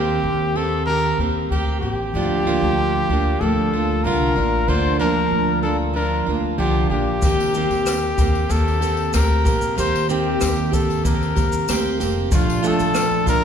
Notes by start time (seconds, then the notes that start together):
Already playing: D#2 D#3 A#3 C4 G4
0.23 D#2
0.56 A#3 C4 G4 A4
0.86 D#3 A#3 C4 G4 A#4
1.18 D#2 C4 G4
1.22 A#3
1.50 D2 A#3 C4 G4
1.81 A1 G4
1.85 A#3 C4
2.14 D2 D3 F3 A#3 D4 F4
2.47 D3 F3 A#3 D4 F4
2.62 D2
3.09 D2 A#3 D4 F4
3.41 D2 F3 A#3 D4 F4 A4
3.73 A#3 D4 F4
4.04 C2 D3 F3 A#3 D4 F4 A#4
4.36 A1 A#3 D4 F4
4.68 D2 D3 F3 A#3 D4 F4 C5
4.99 D3 F3 A#3 D4 F4 A#4
5.31 D2
5.63 A#3 D4 F4 A4
5.94 F3 A#3 D4 F4 A#4
6.26 D2 A#3 D4 F4
6.58 C2 D3 F3 A#3 D4 F4 G4
6.90 A#1 A#3 D4 F4 G4
7.22 D#2 D#3 A#3 C4, kick, tambourine, shaker
7.26 G4
7.40 tambourine
7.54 D#3 A#3 C4 G4, shaker
7.70 D#2, tambourine
7.86 cross-stick, tambourine, shaker
8.18 D#2 A#3 C4 G4, kick, tambourine, shaker
8.35 tambourine
8.49 D#2 D#3 A#3 C4 G4 A4, tambourine, shaker
8.68 tambourine
8.81 A#3 C4 G4, tambourine, shaker
8.97 tambourine
9.13 D2 A#3 C4 G4 A#4, cross-stick, tambourine, shaker
9.45 A#1 A#3 C4 G4, kick, tambourine, shaker
9.61 shaker
9.77 D#2 D#3 A#3 C4 G4 C5, tambourine, shaker
9.95 tambourine
10.09 D#3 A#3 C4 G4, shaker
10.41 D#2, cross-stick, tambourine, shaker
10.72 A#3 C4 G4 A4, kick, tambourine, shaker
10.90 tambourine
11.04 D#3 A#3 C4 G4 A#4, kick, tambourine, shaker
11.21 cross-stick, tambourine
11.36 D#2 A#3 C4 G4, kick, tambourine, shaker
11.52 shaker
11.68 D2 A#3 C4 G4, cross-stick, tambourine, shaker
12.00 F1 A#3 C4 G4, tambourine, shaker
12.31 A#1 A#2 F3 A3 D4 F4, kick, tambourine, shaker
12.50 tambourine
12.63 A#2 F3 A3 D4 F4, shaker
12.67 A4
12.79 A#1, tambourine, shaker
12.94 cross-stick, tambourine, shaker
13.26 A#1 D4 F4 A#4, kick, tambourine, shaker